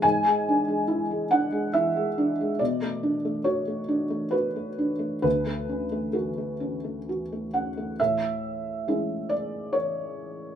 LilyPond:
<<
  \new Staff \with { instrumentName = "Felt piano" } { \time 3/4 \key a \major \tempo 4 = 68 gis''4. fis''8 e''4 | d''4 cis''4 b'4 | b'4 a'4 r8 fis''8 | e''4. d''8 cis''4 | }
  \new Staff \with { instrumentName = "Felt piano" } { \time 3/4 \key a \major gis,16 gis16 d'16 gis16 e'16 gis16 d'16 gis16 e'16 gis16 d'16 gis16 | b,16 a16 d'16 a16 fis'16 a16 d'16 a16 fis'16 a16 d'16 a16 | d,16 a16 cis'16 a16 fis'16 a16 cis'16 a16 fis'16 a16 cis'16 a16 | a,4 <gis cis' e'>2 | }
>>